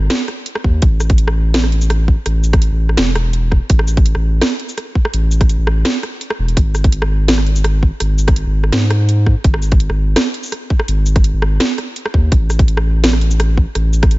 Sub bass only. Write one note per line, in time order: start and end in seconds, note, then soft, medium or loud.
0.64 0.81 D#2 medium
0.82 2.16 A1 loud
2.26 2.70 A1 loud
2.72 2.97 A1 medium
2.98 3.60 E1 medium
3.70 4.14 A1 loud
4.16 4.41 A1 medium
5.13 5.58 A1 loud
5.59 5.84 A1 medium
6.39 6.56 E1 medium
6.57 7.91 G#1 medium
8.01 8.45 G#1 loud
8.46 8.72 G#1 medium
8.73 9.35 G#2 medium
9.44 9.89 G#1 loud
9.90 10.15 G#1 medium
10.88 11.32 G#1 loud
11.33 11.59 G#1 medium
12.14 12.31 D#2 medium
12.32 13.66 A1 loud
13.75 14.19 A1 loud